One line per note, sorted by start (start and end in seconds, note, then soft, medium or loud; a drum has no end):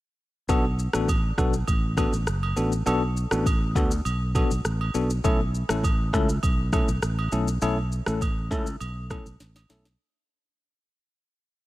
0.49 0.86 B1 loud
0.49 0.64 B3 medium
0.49 0.64 D4 medium
0.49 0.64 F#4 medium
0.49 0.64 A4 loud
0.49 kick loud
0.49 high agogo medium
0.49 shaker medium
0.79 shaker medium
0.93 1.31 A1 medium
0.93 1.08 B3 medium
0.93 1.08 D4 medium
0.93 1.08 F#4 medium
0.93 1.08 A4 medium
0.93 cross-stick loud
0.93 shaker medium
1.08 kick medium
1.08 high agogo medium
1.08 shaker medium
1.38 1.62 B1 medium
1.38 1.53 B3 medium
1.38 1.53 D4 medium
1.38 1.53 F#4 medium
1.38 1.53 A4 medium
1.38 kick medium
1.38 cross-stick medium
1.38 shaker medium
1.53 shaker medium
1.67 2.05 A1 medium
1.67 kick medium
1.67 high agogo medium
1.67 shaker medium
1.97 2.12 B3 medium
1.97 2.12 D4 medium
1.97 2.12 F#4 medium
1.97 2.13 A4 medium
1.97 kick medium
1.97 cross-stick medium
1.97 high agogo medium
1.97 shaker medium
2.13 2.25 A1 medium
2.13 shaker medium
2.27 2.52 F#1 medium
2.27 cross-stick medium
2.27 shaker medium
2.43 high agogo medium
2.57 2.81 A1 medium
2.57 2.72 B3 medium
2.57 2.72 D4 medium
2.57 2.72 F#4 medium
2.57 2.72 A4 medium
2.57 shaker medium
2.72 shaker medium
2.86 3.24 B1 loud
2.86 3.01 B3 medium
2.86 3.01 D4 medium
2.86 3.02 F#4 medium
2.86 3.02 A4 loud
2.86 high agogo medium
2.86 shaker medium
3.17 shaker medium
3.31 3.76 A1 medium
3.31 3.45 B3 medium
3.31 3.45 D4 medium
3.31 3.46 F#4 medium
3.31 3.46 A4 medium
3.31 cross-stick loud
3.31 shaker medium
3.46 kick medium
3.46 high agogo medium
3.46 shaker medium
3.75 4.00 D2 medium
3.75 3.90 B3 medium
3.75 3.91 D4 medium
3.75 3.91 F#4 medium
3.75 3.91 A4 medium
3.75 kick medium
3.75 shaker medium
3.91 shaker medium
4.05 4.43 B1 medium
4.05 high agogo medium
4.05 shaker medium
4.35 4.50 B3 medium
4.35 4.50 D4 medium
4.35 4.50 F#4 medium
4.35 4.50 A4 medium
4.35 kick medium
4.35 high agogo medium
4.35 shaker medium
4.51 4.62 B1 medium
4.51 shaker medium
4.65 4.89 A1 medium
4.65 cross-stick medium
4.65 shaker medium
4.81 high agogo medium
4.94 5.19 B1 medium
4.94 5.09 B3 medium
4.94 5.10 D4 medium
4.94 5.10 F#4 medium
4.94 5.10 A4 medium
4.94 shaker medium
5.10 shaker medium
5.24 5.62 B1 loud
5.24 5.39 A3 medium
5.24 5.39 C#4 medium
5.24 5.39 E4 medium
5.24 5.39 A4 medium
5.24 kick loud
5.24 high agogo medium
5.24 shaker medium
5.55 shaker medium
5.69 6.13 A1 medium
5.69 5.83 A3 medium
5.69 5.83 C#4 medium
5.69 5.83 E4 medium
5.69 5.83 A4 medium
5.69 cross-stick loud
5.69 shaker medium
5.84 kick loud
5.84 high agogo medium
5.84 shaker medium
6.13 6.38 C#2 medium
6.13 6.28 A3 medium
6.13 6.28 C#4 medium
6.13 6.28 E4 medium
6.13 6.29 A4 medium
6.13 kick loud
6.13 cross-stick medium
6.13 shaker medium
6.29 shaker medium
6.43 6.81 B1 medium
6.43 kick medium
6.43 high agogo medium
6.43 shaker medium
6.73 6.88 A3 medium
6.73 6.88 C#4 medium
6.73 6.88 E4 medium
6.73 6.88 A4 medium
6.73 kick medium
6.73 cross-stick medium
6.73 high agogo medium
6.73 shaker medium
6.88 7.00 B1 medium
6.88 shaker medium
7.02 7.27 A1 medium
7.02 cross-stick loud
7.02 shaker medium
7.19 high agogo medium
7.32 7.57 B1 medium
7.32 7.47 A3 medium
7.32 7.47 C#4 medium
7.32 7.47 E4 medium
7.32 7.47 A4 medium
7.32 shaker medium
7.48 shaker medium
7.62 7.99 B1 loud
7.62 7.77 A3 medium
7.62 7.77 C#4 medium
7.62 7.77 E4 medium
7.62 7.77 A4 loud
7.62 high agogo medium
7.62 shaker medium
7.92 shaker medium
8.06 8.51 A1 medium
8.06 8.21 A3 medium
8.06 8.21 C#4 medium
8.06 8.21 E4 medium
8.06 8.21 A4 medium
8.06 cross-stick loud
8.06 shaker medium
8.21 kick loud
8.21 high agogo medium
8.21 shaker medium
8.51 8.75 C#2 medium
8.51 8.66 A3 medium
8.51 8.66 C#4 medium
8.51 8.66 E4 medium
8.51 8.66 A4 medium
8.51 kick medium
8.51 shaker medium
8.67 shaker medium
8.80 9.18 B1 medium
8.80 high agogo medium
8.80 shaker medium
9.10 9.25 A3 medium
9.10 9.25 C#4 medium
9.10 9.26 E4 medium
9.10 9.26 A4 medium
9.10 kick medium
9.10 cross-stick medium
9.10 high agogo medium
9.10 shaker medium
9.26 9.38 B1 medium
9.26 shaker medium
9.40 9.65 A1 medium
9.40 snare medium
9.40 shaker medium
9.56 snare medium
9.56 high agogo medium
9.70 9.94 B1 medium
9.70 9.85 A3 medium
9.70 9.85 C#4 medium
9.70 9.85 E4 medium
9.70 9.85 A4 medium
9.70 snare medium
9.70 shaker medium
9.85 snare medium
9.85 shaker medium